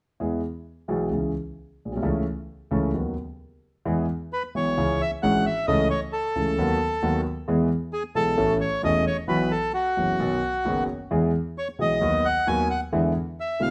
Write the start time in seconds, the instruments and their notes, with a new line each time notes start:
0.20 grand piano E2 E3 G#3 B3 G#4
0.88 grand piano B1 B2 E3 G#3 B3 G#4
1.11 grand piano C#2 C#3 E3 G#3 C#4 G#4
1.85 grand piano A#1
1.92 grand piano B1
1.97 grand piano C2
2.02 grand piano C#2 C#3 E3 A3 C#4 A4
2.71 grand piano C#2 C#3 E3 A3 C#4 A4
2.94 grand piano D#2 D#3 F#3 B3 F#4
3.85 grand piano E2 E3 G#3 B3 G#4
4.33 bandoneon B4
4.55 grand piano B1 B2 E3 G#3 B3 G#4, bandoneon C#5
4.77 grand piano C#2 C#3 E3 G#3 C#4 G#4
5.01 bandoneon E5
5.23 grand piano G#1 G#2 E3 G#3 C#4 G#4, bandoneon F#5
5.46 bandoneon E5
5.67 grand piano C#2 C#3 E3 A3 C#4 A4, bandoneon D#5
5.90 bandoneon C#5
6.13 bandoneon A4
6.36 grand piano C#2 C#3 E3 A3 C#4 A4
6.58 grand piano D#2 D#3 F#3 B3 F#4
7.03 grand piano D#2 D#3 F#3 B3 F#4
7.48 grand piano E2 E3 G#3 B3 G#4
7.93 bandoneon G#4
8.15 grand piano B1 B2 E3 G#3 B3 G#4, bandoneon A4
8.37 grand piano A1 A2 E3 A3 C#4 A4
8.61 bandoneon C#5
8.83 grand piano E1 E2 E3 A3 C#4 A4, bandoneon D#5
9.07 bandoneon C#5
9.28 grand piano B1 B2 E3 F#3 B3 F#4, bandoneon B4
9.51 bandoneon A4
9.74 bandoneon F#4
9.97 grand piano F#1 F#2 E3 F#3 B3 F#4
10.19 grand piano B1 B2 D#3 F#3 B3 F#4
10.65 grand piano F#1 F#2 D#3 F#3 B3 F#4
11.11 grand piano E2 E3 G#3 B3 G#4
11.58 bandoneon C#5
11.79 grand piano B1 B2 E3 G#3 B3 G#4, bandoneon D#5
12.01 grand piano D#2 D#3 F#3 B3 F#4
12.25 bandoneon F#5
12.47 grand piano D#2 D#3 F#3 B3 F#4, bandoneon G#5
12.71 bandoneon F#5
12.92 grand piano E2 D3 E3 G#3 B3 E4
13.40 bandoneon E5
13.60 grand piano B1 B2 D3 G#3 B3 E4, bandoneon F5